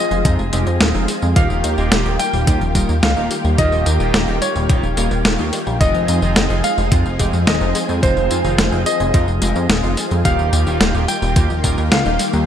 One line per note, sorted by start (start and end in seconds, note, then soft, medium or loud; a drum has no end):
0.00 1.32 F3 medium
0.00 1.32 C4 medium
0.00 1.34 F4 medium
0.00 1.32 G#4 medium
0.00 1.25 D#5 loud
0.11 0.24 F1 medium
0.11 0.23 G#3 loud
0.11 tambourine soft
0.25 0.37 F2 loud
0.25 0.37 G#3 medium
0.25 0.40 G#3 medium
0.25 0.40 C4 medium
0.25 0.40 D#4 medium
0.25 0.40 F4 medium
0.25 kick loud
0.25 closed hi-hat loud
0.25 tambourine soft
0.39 0.51 F1 medium
0.39 0.51 F3 medium
0.39 tambourine soft
0.53 0.65 F1 loud
0.53 0.60 G#3 loud
0.53 0.68 G#3 medium
0.53 0.68 C4 medium
0.53 0.68 D#4 medium
0.53 0.68 G4 medium
0.53 closed hi-hat medium
0.53 tambourine medium
0.67 0.79 F2 medium
0.67 0.80 C4 medium
0.67 tambourine soft
0.81 0.93 D#1 loud
0.81 0.88 D#3 medium
0.81 snare loud
0.81 closed hi-hat loud
0.81 tambourine soft
0.95 1.07 F1 medium
0.95 1.04 G#3 medium
0.95 1.04 C4 medium
0.95 1.06 D#4 medium
0.95 1.04 D#4 medium
0.95 1.04 F4 loud
0.95 tambourine soft
1.08 1.20 G#3 medium
1.08 open hi-hat medium
1.08 tambourine medium
1.22 1.35 F2 medium
1.22 1.34 G#3 loud
1.22 tambourine soft
1.36 1.49 D#1 loud
1.36 5.77 D#3 medium
1.36 1.75 D#3 medium
1.36 1.48 D#3 medium
1.36 5.77 A#3 medium
1.36 1.75 A#3 medium
1.36 1.75 D#4 medium
1.36 5.77 F4 medium
1.36 1.75 F4 medium
1.36 5.77 G4 medium
1.36 1.75 G4 loud
1.36 2.08 F5 medium
1.36 kick loud
1.36 closed hi-hat loud
1.36 tambourine soft
1.50 1.62 D#1 medium
1.50 1.62 F3 medium
1.50 tambourine soft
1.64 1.76 D#2 medium
1.64 1.76 D#4 medium
1.64 closed hi-hat medium
1.64 tambourine medium
1.78 1.90 D#1 medium
1.78 1.90 D#3 medium
1.78 2.02 D#3 loud
1.78 2.02 A#3 medium
1.78 2.02 D#4 medium
1.78 2.02 F4 medium
1.78 2.02 G4 loud
1.78 tambourine soft
1.92 2.04 D#1 loud
1.92 1.99 D#3 medium
1.92 snare loud
1.92 closed hi-hat loud
1.92 tambourine soft
2.06 2.18 D#1 medium
2.06 2.15 D#3 medium
2.06 2.15 A#3 medium
2.06 2.15 D#4 medium
2.06 2.15 F4 medium
2.06 2.19 G4 medium
2.06 2.15 G4 loud
2.06 tambourine soft
2.19 2.31 G3 medium
2.19 2.92 G5 loud
2.19 closed hi-hat medium
2.19 tambourine medium
2.33 2.46 D#1 medium
2.33 2.45 G3 loud
2.33 tambourine soft
2.47 2.60 D#2 loud
2.47 2.62 D#3 medium
2.47 2.59 G3 medium
2.47 2.62 A#3 medium
2.47 2.62 D#4 medium
2.47 2.62 F4 medium
2.47 2.62 G4 medium
2.47 kick loud
2.47 closed hi-hat loud
2.47 tambourine soft
2.61 2.74 D#1 medium
2.61 2.73 F3 medium
2.61 tambourine soft
2.75 2.87 D#1 loud
2.75 2.90 D#3 medium
2.75 2.82 G3 loud
2.75 2.90 A#3 medium
2.75 2.90 D#4 medium
2.75 2.90 F4 medium
2.75 2.90 A#4 medium
2.75 kick medium
2.75 closed hi-hat medium
2.75 tambourine medium
2.89 3.01 D#2 medium
2.89 3.02 A#3 medium
2.89 tambourine soft
3.03 3.15 C#2 loud
3.03 3.10 D#3 medium
3.03 3.41 F5 medium
3.03 snare loud
3.03 closed hi-hat medium
3.03 tambourine soft
3.17 3.29 D#1 medium
3.17 3.26 D#3 medium
3.17 3.26 A#3 medium
3.17 3.28 D#4 medium
3.17 3.26 D#4 medium
3.17 3.26 F4 medium
3.17 3.26 G4 loud
3.17 tambourine soft
3.31 3.42 G3 medium
3.31 open hi-hat medium
3.31 tambourine medium
3.45 3.57 D#2 medium
3.45 3.56 G3 loud
3.45 tambourine soft
3.58 3.71 D#1 loud
3.58 3.70 D#3 medium
3.58 3.97 D#3 loud
3.58 3.97 A#3 medium
3.58 3.97 D#4 medium
3.58 3.97 F4 medium
3.58 3.97 G4 loud
3.58 4.31 D#5 medium
3.58 kick loud
3.58 closed hi-hat loud
3.58 tambourine soft
3.72 3.85 D#1 medium
3.72 3.84 F3 medium
3.72 tambourine soft
3.86 3.99 D#2 medium
3.86 3.98 D#4 medium
3.86 closed hi-hat medium
3.86 tambourine medium
4.00 4.12 D#1 medium
4.00 4.12 D#3 medium
4.00 4.24 D#3 loud
4.00 4.25 A#3 medium
4.00 4.24 D#4 medium
4.00 4.25 F4 medium
4.00 4.25 G4 loud
4.00 tambourine soft
4.14 4.26 D#1 loud
4.14 4.21 D#3 medium
4.14 snare loud
4.14 closed hi-hat medium
4.14 tambourine soft
4.28 4.40 D#1 medium
4.28 4.37 D#3 medium
4.28 4.37 A#3 medium
4.28 4.37 D#4 medium
4.28 4.37 F4 medium
4.28 4.41 G4 medium
4.28 4.37 G4 loud
4.28 tambourine soft
4.42 4.53 G3 medium
4.42 5.70 C#5 medium
4.42 closed hi-hat medium
4.42 tambourine medium
4.56 4.68 D#1 medium
4.56 4.67 G3 loud
4.56 tambourine soft
4.69 4.82 D#1 loud
4.69 4.84 D#3 medium
4.69 4.81 G3 medium
4.69 4.84 A#3 medium
4.69 4.84 D#4 medium
4.69 4.84 F4 medium
4.69 4.84 G4 medium
4.69 kick loud
4.69 closed hi-hat medium
4.69 tambourine soft
4.83 4.96 D#1 medium
4.83 4.95 F3 medium
4.83 tambourine soft
4.97 5.10 D#1 loud
4.97 5.12 D#3 medium
4.97 5.04 G3 loud
4.97 5.12 A#3 medium
4.97 5.12 D#4 medium
4.97 5.12 F4 medium
4.97 5.12 A#4 medium
4.97 closed hi-hat medium
4.97 tambourine medium
5.11 5.24 D#1 medium
5.11 5.24 A#3 medium
5.11 tambourine soft
5.25 5.37 D#1 loud
5.25 5.32 D#3 medium
5.25 snare loud
5.25 closed hi-hat medium
5.25 tambourine soft
5.39 5.51 D#2 medium
5.39 5.48 D#3 medium
5.39 5.48 A#3 medium
5.39 5.48 D#4 medium
5.39 5.51 D#4 medium
5.39 5.48 F4 medium
5.39 5.48 G4 loud
5.39 tambourine soft
5.53 5.65 G3 medium
5.53 open hi-hat medium
5.53 tambourine medium
5.67 5.79 A#1 medium
5.67 5.79 G3 loud
5.67 tambourine soft
5.81 5.93 F1 loud
5.81 5.92 D#3 medium
5.81 10.21 F3 medium
5.81 6.19 G#3 loud
5.81 6.19 C4 medium
5.81 10.21 C4 medium
5.81 6.19 D#4 medium
5.81 8.01 D#4 medium
5.81 6.19 F4 loud
5.81 10.21 G#4 medium
5.81 6.53 D#5 medium
5.81 kick loud
5.81 closed hi-hat medium
5.81 tambourine soft
5.94 6.07 F1 medium
5.94 6.06 F3 medium
5.94 tambourine soft
6.08 6.21 F2 medium
6.08 6.20 D#4 medium
6.08 closed hi-hat medium
6.08 tambourine medium
6.22 6.35 F1 medium
6.22 6.34 D#3 medium
6.22 6.47 G#3 loud
6.22 6.47 C4 medium
6.22 6.47 D#4 medium
6.22 6.47 F4 loud
6.22 tambourine soft
6.36 6.49 F1 loud
6.36 6.43 D#3 medium
6.36 snare loud
6.36 closed hi-hat medium
6.36 tambourine soft
6.50 6.62 F1 medium
6.50 6.59 G#3 medium
6.50 6.59 C4 medium
6.50 6.59 D#4 medium
6.50 6.59 F4 loud
6.50 6.63 G#4 medium
6.50 tambourine soft
6.64 6.76 G#3 medium
6.64 7.36 F5 loud
6.64 closed hi-hat medium
6.64 tambourine medium
6.78 6.90 F1 medium
6.78 6.90 G#3 loud
6.78 tambourine soft
6.92 7.04 F2 loud
6.92 7.07 G#3 medium
6.92 7.03 G#3 medium
6.92 7.07 C4 medium
6.92 7.07 D#4 medium
6.92 7.07 F4 medium
6.92 kick loud
6.92 closed hi-hat loud
6.92 tambourine soft
7.06 7.18 F1 medium
7.06 7.17 F3 medium
7.06 tambourine soft
7.19 7.32 F1 loud
7.19 7.35 G#3 medium
7.19 7.27 G#3 loud
7.19 7.35 C4 medium
7.19 7.35 D#4 medium
7.19 7.35 G4 loud
7.19 kick medium
7.19 closed hi-hat medium
7.19 tambourine medium
7.33 7.46 F2 medium
7.33 7.47 C4 medium
7.33 tambourine soft
7.47 7.60 D#1 loud
7.47 7.54 D#3 medium
7.47 7.85 D#5 medium
7.47 snare loud
7.47 closed hi-hat medium
7.47 tambourine soft
7.61 7.74 F1 medium
7.61 7.71 G#3 medium
7.61 7.71 C4 medium
7.61 7.71 D#4 medium
7.61 7.73 D#4 medium
7.61 7.71 F4 loud
7.61 tambourine soft
7.75 7.87 G#3 medium
7.75 open hi-hat medium
7.75 tambourine medium
7.89 8.01 F2 medium
7.89 8.01 G#3 loud
7.89 tambourine soft
8.03 8.15 F1 medium
8.03 8.15 D#3 medium
8.03 8.41 G#3 medium
8.03 8.41 C4 medium
8.03 8.41 D#4 medium
8.03 8.41 F4 loud
8.03 12.46 F4 medium
8.03 8.75 C5 medium
8.03 kick loud
8.03 closed hi-hat medium
8.03 tambourine soft
8.17 8.29 F1 medium
8.17 8.29 F3 medium
8.17 tambourine soft
8.31 8.43 F2 medium
8.31 8.42 D#4 medium
8.31 closed hi-hat medium
8.31 tambourine medium
8.44 8.57 F1 medium
8.44 8.56 D#3 medium
8.44 8.69 G#3 loud
8.44 8.69 C4 medium
8.44 8.69 D#4 medium
8.44 8.69 F4 loud
8.44 tambourine soft
8.58 8.71 F1 loud
8.58 8.66 D#3 medium
8.58 snare loud
8.58 closed hi-hat medium
8.58 tambourine soft
8.72 8.85 F1 medium
8.72 8.82 G#3 medium
8.72 8.82 C4 medium
8.72 8.82 D#4 medium
8.72 8.82 F4 loud
8.72 8.86 G#4 medium
8.72 tambourine soft
8.86 8.98 G#3 medium
8.86 10.14 D#5 loud
8.86 closed hi-hat medium
8.86 tambourine medium
9.00 9.13 F1 medium
9.00 9.12 G#3 loud
9.00 tambourine soft
9.14 9.26 F2 loud
9.14 9.29 G#3 medium
9.14 9.26 G#3 medium
9.14 9.29 C4 medium
9.14 9.29 D#4 medium
9.14 9.29 F4 medium
9.14 kick loud
9.14 closed hi-hat medium
9.14 tambourine soft
9.28 9.40 F1 medium
9.28 9.40 F3 medium
9.28 tambourine soft
9.42 9.54 F1 medium
9.42 9.57 G#3 medium
9.42 9.49 G#3 loud
9.42 9.57 C4 medium
9.42 9.57 D#4 medium
9.42 9.57 G4 medium
9.42 closed hi-hat medium
9.42 tambourine medium
9.56 9.68 F2 medium
9.56 9.69 C4 medium
9.56 tambourine soft
9.70 9.82 D#1 loud
9.70 9.77 D#3 medium
9.70 snare loud
9.70 closed hi-hat medium
9.70 tambourine soft
9.83 9.96 F1 medium
9.83 9.93 G#3 medium
9.83 9.93 C4 medium
9.83 9.93 D#4 medium
9.83 9.95 D#4 medium
9.83 9.93 F4 loud
9.83 tambourine soft
9.97 10.09 G#3 medium
9.97 open hi-hat medium
9.97 tambourine medium
10.11 10.24 F2 medium
10.11 10.23 G#3 loud
10.11 tambourine soft
10.25 10.37 D#1 loud
10.25 10.63 D#3 medium
10.25 10.37 D#3 medium
10.25 12.46 D#3 medium
10.25 10.63 A#3 medium
10.25 12.46 A#3 medium
10.25 10.63 D#4 medium
10.25 10.63 F4 medium
10.25 10.63 G4 loud
10.25 12.46 G4 medium
10.25 10.97 F5 medium
10.25 kick loud
10.25 closed hi-hat loud
10.25 tambourine soft
10.39 10.51 D#1 medium
10.39 10.51 F3 medium
10.39 tambourine soft
10.53 10.65 D#2 medium
10.53 10.65 D#4 medium
10.53 closed hi-hat medium
10.53 tambourine medium
10.67 10.79 D#1 medium
10.67 10.78 D#3 medium
10.67 10.91 D#3 loud
10.67 10.91 A#3 loud
10.67 10.91 D#4 medium
10.67 10.91 F4 medium
10.67 10.91 G4 loud
10.67 tambourine soft
10.81 10.93 D#1 loud
10.81 10.88 D#3 medium
10.81 snare loud
10.81 closed hi-hat medium
10.81 tambourine soft
10.94 11.07 D#1 medium
10.94 11.04 D#3 loud
10.94 11.04 A#3 medium
10.94 11.04 D#4 medium
10.94 11.04 F4 medium
10.94 11.08 G4 medium
10.94 11.04 G4 loud
10.94 tambourine soft
11.08 11.20 G3 medium
11.08 11.81 G5 medium
11.08 closed hi-hat medium
11.08 tambourine medium
11.22 11.35 D#1 medium
11.22 11.34 G3 loud
11.22 tambourine soft
11.36 11.49 D#2 loud
11.36 11.51 D#3 medium
11.36 11.48 G3 medium
11.36 11.51 A#3 medium
11.36 11.51 D#4 medium
11.36 11.51 F4 medium
11.36 11.51 G4 medium
11.36 kick loud
11.36 closed hi-hat loud
11.36 tambourine soft
11.50 11.62 D#1 medium
11.50 11.62 F3 medium
11.50 tambourine soft
11.64 11.76 D#1 medium
11.64 11.79 D#3 medium
11.64 11.71 G3 loud
11.64 11.79 A#3 medium
11.64 11.79 D#4 medium
11.64 11.79 F4 medium
11.64 11.79 A#4 medium
11.64 kick medium
11.64 closed hi-hat medium
11.64 tambourine medium
11.78 11.90 D#2 medium
11.78 11.91 A#3 medium
11.78 tambourine soft
11.92 12.04 C#2 loud
11.92 11.99 D#3 medium
11.92 12.30 F5 medium
11.92 snare loud
11.92 closed hi-hat medium
11.92 tambourine soft
12.06 12.18 D#1 medium
12.06 12.15 D#3 medium
12.06 12.15 A#3 medium
12.06 12.15 D#4 medium
12.06 12.17 D#4 medium
12.06 12.15 F4 medium
12.06 12.15 G4 loud
12.06 tambourine soft
12.19 12.31 G3 medium
12.19 open hi-hat medium
12.19 tambourine medium
12.33 12.46 D#2 medium
12.33 12.45 G3 loud
12.33 tambourine soft